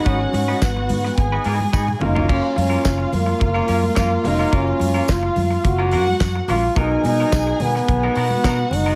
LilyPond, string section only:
\new Staff \with { instrumentName = "String section" } { \time 4/4 \key fis \major \tempo 4 = 107 <fis' fis''>2 <gis' gis''>4. <eis' eis''>8~ | <eis' eis''>1~ | <eis' eis''>2~ <eis' eis''>8 <fis' fis''>4 r8 | <gis' gis''>2~ <gis' gis''>8 <fis' fis''>4. | }